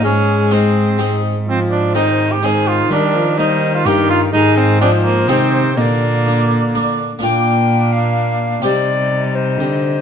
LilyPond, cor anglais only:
\new Staff \with { instrumentName = "Cor anglais" } { \time 3/4 \key bes \mixolydian \tempo 4 = 126 des'4 c'4. r8 | c'8 d'8 ees'8. g'16 aes'8 f'8 | d'4 ees'8. f'16 g'8 f'8 | ees'8 c'8 d'8 bes8 c'4 |
bes2~ bes8 r8 | d'2. | ees'2. | }